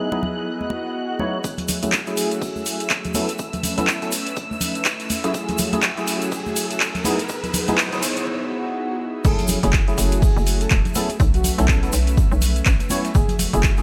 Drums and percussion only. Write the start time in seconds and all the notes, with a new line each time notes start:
0.12 muted conga
0.23 low conga
0.61 high conga
0.70 muted conga
1.19 high conga
1.44 kick, closed hi-hat, shaker
1.58 closed hi-hat, low conga, shaker
1.68 closed hi-hat, open hi-hat, low conga, shaker
1.83 closed hi-hat, high conga, shaker
1.92 kick, snare, clap, closed hi-hat, shaker
2.07 closed hi-hat, shaker
2.17 closed hi-hat, open hi-hat, shaker
2.31 closed hi-hat, shaker
2.42 kick, open hi-hat, shaker
2.56 high conga, shaker
2.66 closed hi-hat, open hi-hat, shaker
2.80 closed hi-hat, shaker
2.90 kick, snare, clap, closed hi-hat, shaker
3.05 closed hi-hat, low conga, shaker
3.14 closed hi-hat, open hi-hat, high conga, shaker
3.29 closed hi-hat, shaker
3.38 kick, closed hi-hat, shaker
3.53 closed hi-hat, low conga, shaker
3.63 closed hi-hat, open hi-hat, low conga, shaker
3.78 snare, closed hi-hat, high conga, shaker
3.87 kick, snare, clap, closed hi-hat, shaker
4.02 closed hi-hat, shaker
4.12 closed hi-hat, open hi-hat, shaker
4.26 closed hi-hat, shaker
4.36 kick, closed hi-hat, shaker
4.51 high conga, shaker
4.61 closed hi-hat, open hi-hat, low conga, shaker
4.75 closed hi-hat, shaker
4.85 kick, snare, clap, closed hi-hat, shaker
5.00 closed hi-hat, shaker
5.10 closed hi-hat, open hi-hat, high conga, shaker
5.24 snare, closed hi-hat, shaker
5.34 kick, closed hi-hat, shaker
5.48 closed hi-hat, low conga, shaker
5.58 closed hi-hat, open hi-hat, low conga, shaker
5.73 closed hi-hat, high conga, shaker
5.82 kick, snare, clap, closed hi-hat, shaker
5.97 closed hi-hat, shaker
6.07 closed hi-hat, open hi-hat, shaker
6.22 closed hi-hat, shaker
6.32 kick, open hi-hat, shaker
6.46 high conga, shaker
6.56 closed hi-hat, open hi-hat, shaker
6.70 closed hi-hat, shaker
6.80 kick, snare, clap, closed hi-hat, shaker
6.95 closed hi-hat, low conga, shaker
7.04 closed hi-hat, open hi-hat, high conga, shaker
7.19 closed hi-hat, shaker
7.29 kick, closed hi-hat, shaker
7.44 closed hi-hat, low conga, shaker
7.54 closed hi-hat, open hi-hat, low conga, shaker
7.67 snare, closed hi-hat, high conga, shaker
7.78 kick, snare, clap, closed hi-hat, shaker
7.92 closed hi-hat, shaker
8.02 closed hi-hat, open hi-hat, shaker
8.17 closed hi-hat, shaker
9.25 kick, closed hi-hat, crash, shaker
9.39 closed hi-hat, low conga, shaker
9.48 closed hi-hat, open hi-hat, low conga, shaker
9.63 closed hi-hat, high conga, shaker
9.73 kick, snare, clap, closed hi-hat, shaker
9.88 closed hi-hat, shaker
9.98 closed hi-hat, open hi-hat, shaker
10.12 closed hi-hat, shaker
10.22 kick, open hi-hat, muted conga, shaker
10.37 high conga, shaker
10.46 closed hi-hat, open hi-hat, shaker
10.61 closed hi-hat, shaker
10.70 kick, snare, clap, closed hi-hat, shaker
10.85 closed hi-hat, low conga, shaker
10.95 closed hi-hat, open hi-hat, high conga, shaker
11.09 closed hi-hat, muted conga, shaker
11.20 kick, closed hi-hat, shaker
11.34 closed hi-hat, low conga, shaker
11.44 closed hi-hat, open hi-hat, low conga, shaker
11.58 snare, closed hi-hat, high conga, shaker
11.68 kick, snare, clap, closed hi-hat, shaker
11.83 closed hi-hat, shaker
11.92 closed hi-hat, open hi-hat, shaker
12.07 closed hi-hat, shaker
12.17 kick, closed hi-hat, shaker
12.32 high conga, shaker
12.41 closed hi-hat, open hi-hat, low conga, shaker
12.56 closed hi-hat, shaker
12.66 kick, snare, clap, closed hi-hat, shaker
12.80 closed hi-hat, muted conga, shaker
12.90 closed hi-hat, open hi-hat, high conga, shaker
13.05 snare, closed hi-hat, shaker
13.15 kick, closed hi-hat, shaker
13.29 closed hi-hat, low conga, shaker
13.39 closed hi-hat, open hi-hat, low conga, shaker
13.53 closed hi-hat, high conga, shaker
13.63 kick, snare, clap, closed hi-hat, shaker
13.77 closed hi-hat, shaker